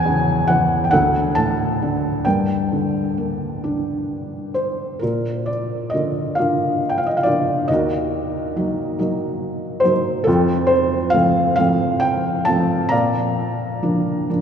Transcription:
0.00 0.88 E2 medium
0.00 0.89 C#5 medium
0.00 0.44 G#5 medium
0.05 0.90 C#3 medium
0.48 0.91 E3 medium
0.48 0.82 F#5 medium
0.84 0.91 G5 medium
0.91 2.22 D2 medium
0.91 2.22 A4 medium
0.91 1.37 F#5 medium
1.35 2.24 A2 soft
1.35 2.28 A5 medium
1.82 2.25 D3 soft
2.25 4.98 G2 medium
2.25 4.52 A#4 soft
2.25 4.51 G5 medium
2.72 4.52 D3 soft
3.17 4.98 A#3 soft
3.64 4.99 D4 soft
4.54 4.98 C5 medium
4.99 7.66 A#2 soft
4.99 5.93 F4 soft
4.99 5.48 A#4 medium
5.46 5.93 D5 medium
5.90 6.79 D3 soft
5.90 6.36 A#3 soft
5.90 6.33 D#5 medium
5.94 6.37 F4 soft
6.35 7.23 A#3 soft
6.35 7.23 D4 soft
6.35 7.24 F4 soft
6.35 6.86 F5 medium
6.89 6.99 G5 medium
6.98 7.07 F5 medium
7.06 7.16 D#5 medium
7.17 7.26 F5 medium
7.23 7.68 A#3 soft
7.23 7.69 D4 soft
7.23 7.68 F4 soft
7.23 7.70 D5 medium
7.68 10.23 D#2 medium
7.68 9.81 F#4 medium
7.68 9.81 A#4 medium
7.68 9.90 D#5 medium
8.56 8.97 F#3 soft
8.56 8.98 A#3 soft
8.56 8.98 D#4 soft
8.99 9.82 F#3 soft
8.99 9.82 A#3 soft
8.99 9.82 D#4 soft
9.80 10.26 F#3 soft
9.80 10.26 C5 medium
9.85 10.26 A#3 soft
9.85 10.26 D#4 soft
10.24 12.88 F2 medium
10.24 11.55 F4 medium
10.24 10.70 A4 medium
10.28 11.13 C4 medium
10.67 11.09 C5 medium
11.10 11.57 F3 soft
11.10 11.57 A3 soft
11.10 11.54 F5 medium
11.14 11.58 C4 medium
11.56 12.45 F3 soft
11.56 12.45 A3 soft
11.56 12.45 C4 medium
11.56 11.98 F5 medium
12.00 12.47 G5 medium
12.45 12.91 F3 soft
12.45 12.91 A3 soft
12.45 12.91 C4 medium
12.45 12.92 A5 medium
12.89 14.41 A#2 medium
12.89 14.41 D5 medium
12.89 14.41 F5 medium
12.89 14.41 A#5 medium
13.82 14.28 F3 soft
13.82 14.28 A#3 soft
13.82 14.29 D4 soft
14.30 14.41 F3 soft
14.30 14.41 A#3 soft
14.30 14.41 D4 soft

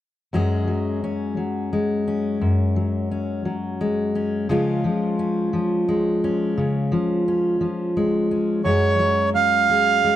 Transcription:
0.33 2.37 F#2 medium
0.33 0.67 F#3 soft
0.33 1.72 G#3 soft
0.33 1.03 C#4 soft
0.33 2.44 G#4 medium
0.68 1.37 F#3 soft
1.04 2.07 C#4 soft
1.37 2.37 F#3 soft
1.73 3.80 G#3 soft
2.08 3.11 C#4 soft
2.41 4.45 F#2 medium
2.76 3.44 F#3 soft
3.11 4.15 C#4 soft
3.45 4.45 F#3 medium
3.81 4.50 G#3 soft
4.15 4.51 C#4 soft
4.49 4.84 C#3 medium
4.49 4.84 F3 soft
4.49 5.88 G#3 medium
4.49 5.19 C#4 soft
4.49 8.66 F4 medium
4.84 5.53 F3 medium
5.19 6.24 C#4 soft
5.53 6.53 F3 soft
5.88 7.96 G#3 soft
6.24 7.28 C#4 medium
6.58 6.92 C#3 medium
6.92 7.59 F3 medium
7.28 8.30 C#4 soft
7.61 8.60 F3 medium
7.97 8.65 G#3 soft
8.31 8.61 C#4 soft
8.64 10.16 F#2 medium
8.64 8.98 F#3 soft
8.64 10.04 G#3 soft
8.64 9.34 C#4 soft
8.64 9.69 G#4 soft
8.64 9.30 C#5 medium
8.99 10.16 F#3 soft
9.35 10.16 C#4 soft
9.35 10.16 F5 medium
9.70 10.16 G#4 medium
10.04 10.16 G#3 soft

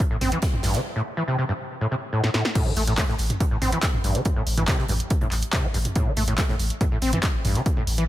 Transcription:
0.00 closed hi-hat medium
0.11 0.21 A1 medium
0.11 0.16 A2 medium
0.21 0.32 A1 loud
0.21 0.30 C4 loud
0.21 closed hi-hat medium
0.21 mid tom medium
0.21 open hi-hat loud
0.32 0.38 E3 medium
0.32 closed hi-hat medium
0.42 kick loud
0.42 snare loud
0.42 closed hi-hat medium
0.53 0.63 A1 medium
0.53 mid tom medium
0.63 0.74 A1 loud
0.63 0.76 G2 medium
0.63 snare loud
0.63 closed hi-hat medium
0.63 open hi-hat loud
0.74 0.80 D3 loud
0.74 snare loud
0.74 closed hi-hat medium
0.96 1.02 A2 medium
1.17 1.23 E3 medium
1.28 1.36 C3 medium
1.38 1.44 C3 medium
1.49 1.52 G2 medium
1.81 1.87 A2 medium
1.91 1.95 C3 medium
2.13 2.22 A2 medium
2.24 2.29 A2 loud
2.24 snare medium
2.34 2.43 A2 medium
2.34 snare medium
2.45 snare medium
2.55 2.68 A2 medium
2.55 kick loud
2.55 closed hi-hat medium
2.55 crash loud
2.66 2.76 A1 medium
2.66 2.72 E3 medium
2.66 mid tom medium
2.76 2.87 A1 loud
2.76 2.83 A3 medium
2.76 closed hi-hat medium
2.76 open hi-hat loud
2.87 2.98 A1 medium
2.87 2.93 A2 medium
2.87 closed hi-hat medium
2.98 3.04 A3 loud
2.98 kick loud
2.98 snare loud
2.98 clap loud
2.98 closed hi-hat medium
2.98 mid tom medium
3.08 3.18 A1 medium
3.08 3.14 A2 medium
3.08 snare medium
3.19 3.30 A1 loud
3.19 closed hi-hat medium
3.19 open hi-hat medium
3.30 closed hi-hat medium
3.30 mid tom medium
3.40 3.44 A2 medium
3.40 kick loud
3.40 closed hi-hat medium
3.51 3.61 A1 medium
3.51 3.57 A2 medium
3.62 3.72 A1 loud
3.62 3.71 C4 loud
3.62 closed hi-hat medium
3.62 mid tom medium
3.62 open hi-hat loud
3.72 3.78 E3 medium
3.72 closed hi-hat medium
3.82 kick loud
3.82 snare loud
3.82 clap loud
3.82 closed hi-hat loud
3.82 closed hi-hat medium
3.94 4.03 A1 medium
3.94 mid tom medium
4.04 4.15 A1 loud
4.04 4.17 G2 medium
4.04 closed hi-hat medium
4.04 open hi-hat medium
4.15 4.21 D3 loud
4.15 snare soft
4.15 closed hi-hat medium
4.25 kick loud
4.25 closed hi-hat medium
4.25 mid tom medium
4.36 4.46 A1 medium
4.36 4.42 A2 medium
4.47 4.57 A1 loud
4.47 closed hi-hat medium
4.47 open hi-hat loud
4.57 4.68 A1 medium
4.57 4.63 E3 medium
4.57 closed hi-hat medium
4.57 mid tom medium
4.68 4.77 C3 medium
4.68 kick loud
4.68 snare loud
4.68 clap loud
4.68 closed hi-hat medium
4.79 4.89 A1 medium
4.79 4.85 C3 medium
4.79 snare soft
4.88 5.00 A1 loud
4.88 4.93 G2 medium
4.88 closed hi-hat medium
4.88 mid tom medium
4.88 open hi-hat loud
5.00 closed hi-hat medium
5.10 kick loud
5.10 closed hi-hat medium
5.21 5.31 A1 medium
5.21 5.27 A2 medium
5.21 closed hi-hat soft
5.21 mid tom medium
5.32 5.42 A1 loud
5.32 clap soft
5.32 closed hi-hat medium
5.32 open hi-hat loud
5.42 closed hi-hat soft
5.42 closed hi-hat medium
5.53 5.65 C3 medium
5.53 kick loud
5.53 snare loud
5.53 clap loud
5.53 closed hi-hat medium
5.53 mid tom medium
5.64 5.74 A1 medium
5.64 5.67 A3 medium
5.74 5.85 A1 loud
5.74 5.78 G2 medium
5.74 open hi-hat loud
5.74 open hi-hat medium
5.85 closed hi-hat soft
5.85 closed hi-hat medium
5.85 mid tom medium
5.96 6.08 A2 medium
5.96 kick loud
5.96 closed hi-hat medium
6.06 6.16 A1 medium
6.06 6.12 E3 medium
6.17 6.27 A1 loud
6.17 6.23 A3 medium
6.17 closed hi-hat medium
6.17 mid tom medium
6.17 open hi-hat loud
6.28 6.38 A1 medium
6.28 6.33 A2 medium
6.28 closed hi-hat medium
6.38 6.44 A3 loud
6.38 kick loud
6.38 snare loud
6.38 clap loud
6.38 closed hi-hat loud
6.38 closed hi-hat medium
6.49 6.59 A1 medium
6.49 6.55 A2 medium
6.49 snare medium
6.49 mid tom medium
6.59 6.70 A1 loud
6.59 closed hi-hat medium
6.59 open hi-hat loud
6.70 closed hi-hat medium
6.81 6.84 A2 medium
6.81 kick loud
6.81 closed hi-hat medium
6.81 mid tom medium
6.91 7.01 A1 medium
6.91 6.97 A2 medium
7.02 7.13 A1 loud
7.02 7.11 C4 loud
7.02 closed hi-hat medium
7.02 open hi-hat loud
7.13 7.19 E3 medium
7.13 closed hi-hat medium
7.13 mid tom medium
7.23 kick loud
7.23 snare loud
7.23 clap loud
7.23 closed hi-hat medium
7.34 7.44 A1 medium
7.44 7.55 A1 loud
7.44 7.57 G2 medium
7.44 closed hi-hat medium
7.44 mid tom medium
7.44 open hi-hat medium
7.55 7.61 D3 loud
7.55 snare soft
7.55 closed hi-hat medium
7.66 kick loud
7.66 closed hi-hat medium
7.66 closed hi-hat loud
7.77 7.86 A1 medium
7.77 7.82 A2 medium
7.77 mid tom medium
7.87 7.97 A1 loud
7.87 closed hi-hat medium
7.87 open hi-hat loud
7.98 8.08 A1 medium
7.98 8.04 E3 medium
7.98 closed hi-hat medium

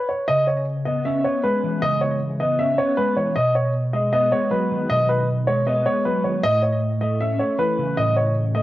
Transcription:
0.09 0.26 C#5 medium
0.28 1.25 C#3 medium
0.28 0.45 D#5 loud
0.47 0.65 C#5 medium
0.85 1.23 B3 medium
0.85 1.03 D#5 medium
1.05 2.01 C#4 loud
1.05 1.22 E5 medium
1.24 2.20 B3 medium
1.24 1.42 C#5 medium
1.43 2.40 G#3 medium
1.43 1.80 B4 medium
1.63 2.59 E3 medium
1.82 2.78 C#3 loud
1.82 1.99 D#5 loud
2.01 2.18 C#5 medium
2.40 2.77 B3 medium
2.40 2.57 D#5 medium
2.59 3.36 C#4 loud
2.59 2.76 E5 medium
2.78 3.36 B3 medium
2.78 2.95 C#5 medium
2.97 3.36 G#3 medium
2.97 3.14 B4 medium
3.16 3.36 E3 medium
3.16 3.34 C#5 medium
3.35 4.32 B2 loud
3.35 3.53 D#5 loud
3.55 3.72 C#5 medium
3.93 4.31 G#3 medium
3.93 4.11 D#5 medium
4.12 5.09 B3 loud
4.12 4.30 D#5 medium
4.32 5.28 G#3 medium
4.32 4.49 C#5 medium
4.51 5.47 F#3 medium
4.51 4.87 B4 medium
4.71 5.67 D#3 medium
4.89 5.86 B2 loud
4.89 5.07 D#5 loud
5.09 5.26 B4 medium
5.47 5.84 G#3 medium
5.47 5.64 C#5 medium
5.67 6.43 B3 loud
5.67 5.84 D#5 medium
5.85 6.43 G#3 medium
5.85 6.03 C#5 medium
6.05 6.44 F#3 medium
6.05 6.22 B4 medium
6.24 6.43 D#3 medium
6.24 6.41 C#5 medium
6.43 7.39 A2 loud
6.43 6.61 D#5 loud
6.63 6.80 C#5 medium
7.01 7.38 A3 medium
7.01 7.18 D#5 medium
7.21 8.17 C#4 medium
7.21 7.38 E5 medium
7.39 8.36 A3 medium
7.39 7.57 C#5 medium
7.58 8.55 E3 medium
7.58 7.95 B4 medium
7.78 8.63 C#3 medium
7.97 8.63 A2 loud
7.97 8.15 D#5 loud
8.17 8.34 C#5 medium
8.55 8.63 A3 medium
8.55 8.63 D#5 medium

